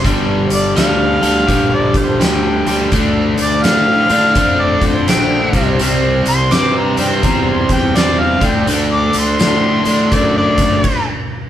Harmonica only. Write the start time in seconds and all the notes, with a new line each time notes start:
0.54 D5
0.76 F5
1.74 D5
1.98 C5
2.21 G4
3.42 D5
3.63 F5
4.60 D5
4.85 C5
5.09 G4
6.28 C6
6.53 D6
6.78 A#5
7.00 G5
7.24 A#5
7.48 C6
7.72 G5
7.97 D5
8.20 F5
8.46 G5
8.93 D6
9.17 C6
10.13 D5
10.37 D5